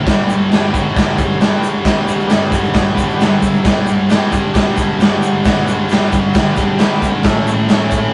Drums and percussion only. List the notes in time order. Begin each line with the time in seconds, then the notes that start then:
0.07 kick, snare, crash, shaker
0.29 shaker
0.52 snare, crash, shaker
0.74 kick, shaker
0.96 kick, snare, crash, shaker
1.18 kick, shaker
1.41 snare, crash, shaker
1.63 shaker
1.85 kick, snare, crash, shaker
2.08 shaker
2.19 shaker
2.30 snare, crash, shaker
2.52 kick, shaker
2.64 shaker
2.74 kick, snare, crash, shaker
2.97 kick, shaker
3.09 shaker
3.20 snare, crash, shaker
3.42 kick, shaker
3.53 shaker
3.65 kick, snare, crash, shaker
3.87 shaker
4.10 snare, crash, shaker
4.32 kick, shaker
4.55 kick, snare, crash, shaker
4.77 kick, shaker
5.00 snare, crash, shaker
5.22 shaker
5.45 kick, snare, crash, shaker
5.68 shaker
5.89 snare, crash, shaker
6.12 kick, shaker
6.34 kick, snare, crash, shaker
6.56 kick, shaker
6.79 snare, crash, shaker
7.02 kick, shaker
7.23 kick, snare, crash, shaker
7.47 shaker
7.69 snare, crash, shaker
7.91 kick, shaker